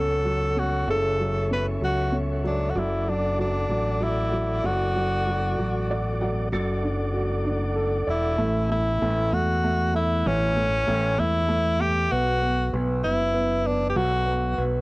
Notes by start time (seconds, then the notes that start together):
Already playing: C#2 F#3 C#4 A4 C#5 F#5 C#6
0.25 F#3
0.56 C#4 F#4
0.87 F#1 C#3 A4 E5
1.20 F#3
1.51 C#4 B4
1.81 C#2 F#3 F#4
2.12 C#4
2.44 F#3 D4
2.70 F#4
2.75 F#1 F#3 E4 D5 F#5 D6
3.07 F#3 D4
3.39 F#3 D4
3.69 A1 F#3
4.00 F#3 E4
4.32 F#3
4.64 F#1 F#3 F#4
4.95 F#3
5.27 F#3
5.58 A1 F#3
5.90 F#3 D5
6.21 F#3 F#5
6.52 F#1 F#3 A4 D5 F#5 D6
6.83 D4
7.14 F#4
7.45 D4
7.76 A4
8.07 E1 E4 D5
8.38 A1 A3
8.70 A3 E4
9.02 A1 A3
9.32 E2 A3 F#4
9.64 A3
9.94 A3 E4
10.26 A1 E3 C#4
10.56 A3
10.87 A1 A3
11.18 E2 A3 E4
11.49 A3
11.80 A3 G4
12.11 B1 B3 F#4
12.42 B3
12.73 B1 B3
13.04 F#1 B3 E4
13.34 B3
13.65 B3 D4
13.89 G4
13.96 B1 F#3 F#4
14.26 B3
14.58 B1 B3